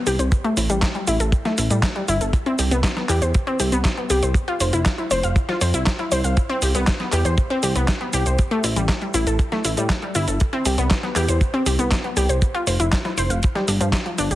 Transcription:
0.07 C2 G4, open hi-hat, cabasa
0.19 C2 C5, closed hi-hat, cabasa
0.32 kick, closed hi-hat, cabasa
0.44 A3, closed hi-hat
0.57 A1 E4, open hi-hat, cabasa
0.70 A1 G3, closed hi-hat, cabasa
0.82 kick, snare, clap, closed hi-hat, cabasa
0.95 G3, closed hi-hat
1.07 A1 E4, open hi-hat, cabasa
1.20 A1 A4, closed hi-hat, cabasa
1.32 kick, closed hi-hat, cabasa
1.45 A3, snare, closed hi-hat
1.58 A1 E4, open hi-hat, cabasa
1.70 A2 G3, closed hi-hat, cabasa
1.83 kick, snare, clap, closed hi-hat, cabasa
1.96 G3, closed hi-hat
2.08 G1 E4, open hi-hat, cabasa
2.21 G1 A4, closed hi-hat, cabasa
2.33 kick, closed hi-hat, cabasa
2.46 C4, closed hi-hat
2.59 C2 G4, open hi-hat, cabasa
2.71 C2 B3, closed hi-hat, cabasa
2.83 kick, snare, clap, closed hi-hat, cabasa
2.97 B3, snare, closed hi-hat
3.09 E2 G4, clap, open hi-hat, cabasa
3.22 E2 C5, closed hi-hat, cabasa
3.34 kick, closed hi-hat, cabasa
3.47 C4, closed hi-hat
3.60 C2 G4, open hi-hat, cabasa
3.72 C2 B3, closed hi-hat, cabasa
3.85 kick, snare, clap, closed hi-hat, cabasa
3.97 B3, closed hi-hat
4.10 C2 G4, open hi-hat, cabasa
4.23 C2 C5, closed hi-hat, cabasa
4.34 kick, closed hi-hat, cabasa
4.48 F4, closed hi-hat
4.60 F1 C5, open hi-hat, cabasa
4.73 F1 E4, closed hi-hat, cabasa
4.86 kick, snare, clap, closed hi-hat, cabasa
4.98 E4, closed hi-hat
5.11 F1 C5, open hi-hat, cabasa
5.23 F1 F5, closed hi-hat, cabasa
5.36 kick, closed hi-hat, cabasa
5.49 F4, snare, closed hi-hat
5.61 F2 C5, open hi-hat, cabasa
5.74 C2 E4, closed hi-hat, cabasa
5.86 kick, snare, clap, closed hi-hat, cabasa
5.99 E4, closed hi-hat
6.12 C2 C5, open hi-hat, cabasa
6.24 C2 F5, closed hi-hat, cabasa
6.37 kick, closed hi-hat, cabasa
6.49 C4, closed hi-hat
6.62 C2 G4, open hi-hat, cabasa
6.75 C2 B3, closed hi-hat, cabasa
6.87 kick, snare, clap, closed hi-hat, cabasa
7.00 B3, snare, closed hi-hat
7.12 E2 G4, clap, open hi-hat, cabasa
7.25 E2 C5, closed hi-hat, cabasa
7.38 kick, closed hi-hat, cabasa
7.50 C4, closed hi-hat
7.63 C2 G4, open hi-hat, cabasa
7.75 C2 B3, closed hi-hat, cabasa
7.88 kick, snare, clap, closed hi-hat, cabasa
8.01 B3, closed hi-hat
8.13 C2 G4, open hi-hat, cabasa
8.26 C2 C5, closed hi-hat, cabasa
8.39 kick, closed hi-hat, cabasa
8.51 A3, closed hi-hat
8.64 A1 E4, open hi-hat, cabasa
8.76 A1 G3, closed hi-hat, cabasa
8.89 kick, snare, clap, closed hi-hat, cabasa
9.02 G3, closed hi-hat
9.14 A1 E4, open hi-hat, cabasa
9.27 A1 A4, closed hi-hat, cabasa
9.39 kick, closed hi-hat, cabasa
9.52 A3, snare, closed hi-hat
9.65 A1 E4, open hi-hat, cabasa
9.77 A2 G3, closed hi-hat, cabasa
9.89 kick, snare, clap, closed hi-hat, cabasa
10.02 G3, closed hi-hat
10.15 G1 E4, open hi-hat, cabasa
10.28 G1 A4, closed hi-hat, cabasa
10.40 kick, closed hi-hat, cabasa
10.53 C4, closed hi-hat
10.65 C2 G4, open hi-hat, cabasa
10.78 C2 B3, closed hi-hat, cabasa
10.91 kick, snare, clap, closed hi-hat, cabasa
11.03 B3, snare, closed hi-hat
11.16 E2 G4, clap, open hi-hat, cabasa
11.28 E2 C5, closed hi-hat, cabasa
11.41 kick, closed hi-hat, cabasa
11.54 C4, closed hi-hat
11.66 C2 G4, open hi-hat, cabasa
11.79 C2 B3, closed hi-hat, cabasa
11.91 kick, snare, clap, closed hi-hat, cabasa
12.04 B3, closed hi-hat
12.17 C2 G4, open hi-hat, cabasa
12.29 C2 C5, closed hi-hat, cabasa
12.42 kick, closed hi-hat, cabasa
12.54 F4, closed hi-hat
12.67 F1 C5, open hi-hat, cabasa
12.80 F1 E4, closed hi-hat, cabasa
12.92 kick, snare, clap, closed hi-hat, cabasa
13.05 E4, snare, closed hi-hat
13.17 F1 C5, open hi-hat, cabasa
13.30 F1 F5, closed hi-hat, cabasa
13.43 kick, closed hi-hat, cabasa
13.55 G3, snare, closed hi-hat
13.68 G1 D4, open hi-hat, cabasa
13.81 G2 F3, closed hi-hat, cabasa
13.93 kick, snare, clap, closed hi-hat, cabasa
14.06 F3, closed hi-hat
14.18 G1 D4, open hi-hat, cabasa
14.31 G1 G4, closed hi-hat, cabasa

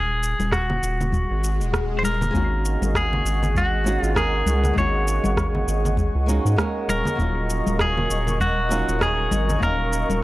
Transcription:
Already playing: D#1 G#4
0.23 shaker
0.39 D#1, high conga, shaker
0.52 F#4, kick, cross-stick, shaker
0.70 low conga
0.83 D#1, shaker
1.01 low conga, shaker
1.13 kick, swell, high conga, shaker
1.31 G#1
1.44 shaker
1.60 D#1, shaker
1.73 kick, cross-stick, shaker
1.99 C5
2.03 A#4, high conga, shaker
2.21 low conga, shaker
2.31 G#1 G#3 A#3 C#4 G#4 D#5, kick
2.35 D#4 F#4 F#5 C#6, shaker
2.65 shaker
2.82 G#1, high conga, shaker
2.95 G#4, kick, cross-stick, shaker
3.13 low conga
3.25 G#1, shaker
3.43 low conga, shaker
3.55 F#4, kick, high conga, shaker
3.84 G#3 A#3 C#4 D#4 F#4, shaker
4.02 G#1 F4, shaker
4.14 G#3 A#3 C#4 D#4 G#4 A#4, kick, cross-stick, shaker
4.46 C#2, high conga, shaker
4.64 low conga, shaker
4.73 G#1 G#3 A#3 C#4, kick
4.78 D#4 F#4 C#5, shaker
5.08 shaker
5.24 G#1, high conga, shaker
5.37 kick, cross-stick, shaker
5.55 low conga
5.67 G#1, shaker
5.85 low conga, shaker
5.97 kick, high conga, shaker
6.15 C#2
6.26 G#3 A#3 C#4 D#4 F#4, shaker
6.45 G#2, shaker
6.56 G#3 A#3 C#4 D#4 A#4, kick, cross-stick, shaker
6.88 D#1 A#4, high conga, shaker
7.05 low conga, shaker
7.15 D#1 F#3 A#3 C#4, kick
7.19 D#4 F4 A#4, shaker
7.50 shaker
7.67 D#1, high conga, shaker
7.79 G#4, kick, cross-stick, shaker
7.97 low conga
8.11 D#1, shaker
8.27 low conga, shaker
8.40 F#4, kick, high conga, shaker
8.69 F#3 A#3 C#4 D#4 F4, shaker
8.88 D#1, shaker
8.99 F#3 A#3 C#4 D#4 G#4, kick, cross-stick, shaker
9.31 G#1, high conga, shaker
9.49 low conga, shaker
9.58 D#1 F#3 A#3 C#4, kick, shaker
9.63 D#4 A#4 F5
9.93 shaker
10.09 D#1, high conga, shaker

